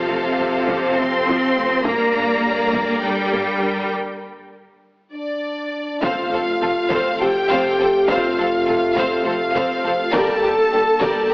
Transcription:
Already playing: cello section C3, trombone section C3 F3, viola section F4, french horn section F4 A4, violin section A4 C5 F5
0.10 double bass section F2, viola section A3
0.40 double bass section F2, viola section C4
0.68 double bass section F2, viola section F3, taiko
0.98 double bass section F2, viola section A3, cello section C4, violin section C6
1.28 double bass section F2, viola section F3
1.57 double bass section F2, viola section A3
1.84 double bass section G2, trombone section D3 G3, cello section A#3, viola section A#3 A#4, french horn section D4 A#4, violin section A#4 D5 A#5, taiko
2.15 double bass section G2, viola section D4
2.43 double bass section G2, viola section G4
2.72 double bass section G2, viola section A#3, taiko
3.02 double bass section G2, cello section G3, viola section D4, violin section G5
3.32 double bass section G2, viola section A#3
3.62 double bass section G2, viola section D4
5.12 french horn section D4, violin section D5
6.01 double bass section F1, cello section F2, trombone section C3 A3, viola section C4 A4, french horn section F4, violin section C5 F5, taiko, impact
6.32 double bass section F1, cello section F2, viola section C4 A4, violin section A4 C5
6.61 double bass section F1, cello section F2, viola section C4 A4, violin section F4 A4
6.90 double bass section F1, cello section F2, viola section C4 A4, violin section C5 F5, taiko
7.20 double bass section F1, cello section F2, viola section C4 A4, french horn section G4, violin section A4 C5 G5
7.50 double bass section F1, cello section F2, viola section C4 A4, violin section C5 F5
7.79 double bass section F1, cello section F2, viola section C4 A4, violin section A4 C5
8.08 double bass section F1, cello section F2, viola section C4 A4, french horn section F4, violin section C5 F5, taiko
8.38 double bass section F1, cello section F2, viola section C4 A4, violin section A4 C5
8.66 double bass section F1, cello section F2, viola section C4 A4, violin section F4 A4
8.96 double bass section F1, cello section F2, viola section C4 A4, violin section C5 F5, taiko
9.25 double bass section F1, cello section F2, viola section C4 A4, french horn section F4, violin section A4 C5 F5
9.55 double bass section F1, cello section F2, viola section C4 A4, violin section C5 F5
9.84 double bass section F1, cello section F2, viola section C4 A4, violin section A4 C5
10.13 double bass section G1, cello section G2, trombone section D3 A#3, viola section G3 G4, french horn section A4, violin section A#4 D5 A5, taiko
10.41 double bass section G1, cello section G2, viola section G3 G4, violin section G4 A#4
10.71 double bass section G1, cello section G2, viola section G3 G4, violin section D4 G4
11.01 double bass section G1, cello section G2, viola section G3 G4, violin section A#4 D5, taiko
11.30 double bass section G1, cello section G2, violin section G4 A#4

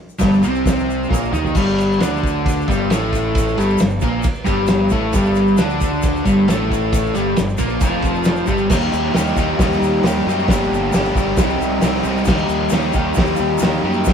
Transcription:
0.09 shaker
0.19 fingered electric bass G1, overdriven electric guitar G2 G3, kick, snare, open hi-hat, shaker
0.33 shaker
0.42 fingered electric bass C2, overdriven electric guitar C3 C4, shaker
0.55 shaker
0.66 kick, snare, open hi-hat, shaker
0.79 shaker
0.90 shaker
1.04 shaker
1.09 fingered electric bass A#1, overdriven electric guitar A#2 A#3, kick, snare
1.14 shaker
1.32 fingered electric bass D#2, overdriven electric guitar D#3 D#4, mid tom, shaker
1.45 floor tom, shaker
1.55 fingered electric bass G1, overdriven electric guitar G2 G3, kick, crash, shaker
1.69 shaker
1.78 ride, shaker
1.92 shaker
1.99 fingered electric bass D2, overdriven electric guitar D3 D4, snare, ride, shaker
2.16 shaker
2.23 kick, ride, shaker
2.46 kick, ride, shaker
2.61 shaker
2.68 fingered electric bass G1, overdriven electric guitar G2 G3, kick, ride, shaker
2.90 fingered electric bass A1, overdriven electric guitar A2 A3, snare, ride, shaker
3.13 kick, ride, shaker
3.35 kick, ride, shaker
3.58 fingered electric bass G1, overdriven electric guitar G2 G3, ride, shaker
3.69 shaker
3.78 fingered electric bass G1, overdriven electric guitar G2, snare, ride, shaker
3.90 shaker
4.01 fingered electric bass A#1, overdriven electric guitar A#2 A#3, kick, ride, shaker
4.23 muted overdriven electric guitar stroke, muted fingered electric bass stroke, kick, ride, shaker
4.35 shaker
4.45 fingered electric bass G1, overdriven electric guitar G2 G3, kick, ride, shaker
4.67 snare, ride, shaker
4.89 fingered electric bass A1, overdriven electric guitar A2 A3, kick, ride, shaker
5.13 fingered electric bass G1, overdriven electric guitar G2 G3, kick, ride, shaker
5.25 shaker
5.35 ride, shaker
5.47 shaker
5.57 fingered electric bass D2, overdriven electric guitar D3 D4, snare, ride, shaker
5.70 shaker
5.81 kick, ride, shaker
6.02 kick, ride, shaker
6.16 shaker
6.24 fingered electric bass G1, overdriven electric guitar G2 G3, kick, ride, shaker
6.47 fingered electric bass A1, overdriven electric guitar A2 A3, snare, ride, shaker
6.71 kick, ride, shaker
6.93 kick, ride, shaker
7.06 shaker
7.14 fingered electric bass G1, overdriven electric guitar G2 G3, ride, shaker
7.37 fingered electric bass G1, overdriven electric guitar G2, snare, ride, shaker
7.49 shaker
7.58 fingered electric bass A#1, overdriven electric guitar A#2 A#3, kick, ride, shaker
7.81 fingered electric bass F1, overdriven electric guitar F2 F3, kick, ride, shaker
8.02 kick, ride, shaker
8.15 shaker
8.24 snare, ride, shaker
8.36 shaker
8.47 fingered electric bass G1, overdriven electric guitar G2 G3, kick, ride, shaker
8.57 shaker
8.70 fingered electric bass D#2, overdriven electric guitar D#3 G3 A#3 D#4 G4, kick, snare, crash, shaker
8.93 fingered electric bass D#2, shaker
9.13 fingered electric bass D#2, overdriven electric guitar D#3 G3 A#3 D#4 G4, snare, open hi-hat, shaker
9.36 fingered electric bass D#2, overdriven electric guitar D#3 G3 A#3 D#4 G4, kick, shaker
9.59 fingered electric bass D#2, overdriven electric guitar D#3 G3 A#3 D#4 G4, kick, snare, open hi-hat, shaker
9.73 shaker
9.82 fingered electric bass D#2, shaker
10.03 fingered electric bass D#2, overdriven electric guitar D#3 G3 A#3 D#4 G4, snare, open hi-hat, shaker
10.26 fingered electric bass F#2, overdriven electric guitar D#3 G3 A#3 D#4 G4, shaker
10.39 shaker
10.48 fingered electric bass G1, overdriven electric guitar G2 D3 G3 A#3 D4, kick, snare, open hi-hat, shaker
10.52 overdriven electric guitar G4
10.64 shaker
10.72 fingered electric bass G1, shaker
10.92 fingered electric bass G1, overdriven electric guitar G2 D3 G3 A#3 D4, snare, open hi-hat, shaker
10.96 overdriven electric guitar G4
11.05 shaker
11.14 fingered electric bass G1, overdriven electric guitar G2 D3 G3 A#3 D4, kick, shaker
11.18 overdriven electric guitar G4
11.37 fingered electric bass C2, overdriven electric guitar C3 G3 C4 D#4 G4, kick, snare, open hi-hat, shaker
11.49 shaker
11.61 fingered electric bass C2, shaker
11.81 fingered electric bass C2, overdriven electric guitar C3 G3 C4 D#4 G4, snare, open hi-hat, shaker
12.04 fingered electric bass C2, overdriven electric guitar C3 G3 C4 D#4, shaker
12.08 overdriven electric guitar G4
12.17 shaker
12.25 fingered electric bass D#2, overdriven electric guitar D#3 G3 A#3 D#4, kick, snare, crash, shaker
12.29 overdriven electric guitar G4
12.37 shaker
12.49 fingered electric bass D#2, shaker
12.69 fingered electric bass D#2, overdriven electric guitar D#3 G3 A#3, snare, open hi-hat, shaker
12.74 overdriven electric guitar D#4 G4
12.93 fingered electric bass D#2, overdriven electric guitar D#3 G3 A#3 D#4 G4, kick, shaker
13.14 fingered electric bass D#2, overdriven electric guitar D#3 G3 A#3, kick, snare, open hi-hat, shaker
13.19 overdriven electric guitar D#4 G4
13.26 shaker
13.36 fingered electric bass D#2, shaker
13.58 fingered electric bass D#2, overdriven electric guitar D#3 G3 A#3, open hi-hat, shaker
13.63 overdriven electric guitar D#4 G4, snare
13.83 fingered electric bass F#2, overdriven electric guitar D#3 G3 A#3 D#4 G4
13.93 shaker
14.05 fingered electric bass G1, overdriven electric guitar G2 D3 G3 A#3, kick, snare, open hi-hat, shaker
14.09 overdriven electric guitar D4

